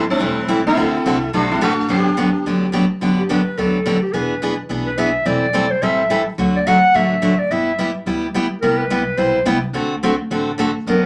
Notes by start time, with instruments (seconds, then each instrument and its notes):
Already playing: upright bass A1
0.10 sitar E3 C4, clarinet A3
0.19 upright bass E1, steel-string acoustic guitar E3 G3 C4 E4 A4
0.48 steel-string acoustic guitar E3 G3 C4 E4 A4
0.65 sitar A3 E4, clarinet C4
0.76 upright bass D2, steel-string acoustic guitar D3 A3 C4 F#4 A4
1.06 upright bass C2, steel-string acoustic guitar D3 A3 C4 F#4 A4
1.33 upright bass B1, steel-string acoustic guitar D3 A3 C4 F#4 A4, sitar F#3 D4, clarinet A3
1.51 sitar G3 E4, clarinet C4
1.61 upright bass A1, steel-string acoustic guitar D3 A3 C4 F#4 A4, sitar A3 F#4, clarinet D4
1.89 upright bass G1, steel-string acoustic guitar D3 F#3 B3 D4 G4, sitar B3 G4, clarinet D4
2.17 steel-string acoustic guitar D3 F#3 B3 D4 G4
2.46 upright bass D2, steel-string acoustic guitar D3 F#3 B3 D4 G4
2.72 steel-string acoustic guitar D3 F#3 B3 D4 G4
3.01 upright bass G1, steel-string acoustic guitar D3 F#3 B3 D4 G4
3.19 clarinet G4
3.29 steel-string acoustic guitar D3 F#3 B3 D4 G4, clarinet B4
3.57 upright bass D2, steel-string acoustic guitar D3 F#3 B3 D4 G4, clarinet A4
3.86 steel-string acoustic guitar D3 F#3 B3 D4 G4
4.02 clarinet G4
4.13 upright bass E1, steel-string acoustic guitar E3 B3 D4 G#4, clarinet B4
4.42 steel-string acoustic guitar E3 B3 D4 G#4
4.69 upright bass B1, steel-string acoustic guitar E3 B3 D4 G#4
4.86 clarinet B4
4.98 steel-string acoustic guitar E3 B3 D4 G#4, clarinet E5
5.25 upright bass E1, steel-string acoustic guitar E3 G3 C4 E4 A4, clarinet D5
5.53 steel-string acoustic guitar E3 G3 C4 E4 A4
5.70 clarinet C5
5.82 upright bass A1, steel-string acoustic guitar E3 G3 C4 E4 A4, clarinet E5
6.10 steel-string acoustic guitar E3 G3 C4 E4 A4
6.38 upright bass D2, steel-string acoustic guitar D3 F#3 A3 D4 F#4
6.56 clarinet D5
6.67 steel-string acoustic guitar D3 F#3 A3 D4 F#4, clarinet F#5
6.94 upright bass A1, steel-string acoustic guitar D3 F#3 A3 D4 F#4, clarinet E5
7.22 steel-string acoustic guitar D3 F#3 A3 D4 F#4
7.39 clarinet D5
7.50 upright bass G1, steel-string acoustic guitar G3 B3 E4 G4, clarinet E5
7.79 steel-string acoustic guitar G3 B3 E4 G4
8.06 upright bass D2, steel-string acoustic guitar G3 B3 E4 G4
8.34 steel-string acoustic guitar G3 B3 E4 G4
8.61 upright bass C2, steel-string acoustic guitar C3 G3 B3 E4 G4, clarinet A#4
8.78 clarinet B4
8.90 steel-string acoustic guitar C3 G3 B3 E4 G4
9.17 upright bass B1, steel-string acoustic guitar C3 G3 B3 E4 G4, clarinet C5
9.45 upright bass C2, steel-string acoustic guitar C3 G3 B3 E4 G4
9.73 upright bass D2, steel-string acoustic guitar D3 A3 C4 F#4 A4
10.03 steel-string acoustic guitar D3 A3 C4 F#4 A4
10.30 upright bass A1, steel-string acoustic guitar D3 A3 C4 F#4 A4
10.58 steel-string acoustic guitar D3 A3 C4 F#4 A4
10.86 upright bass G1, steel-string acoustic guitar D3 F#3 B3 D4 G4, clarinet A#4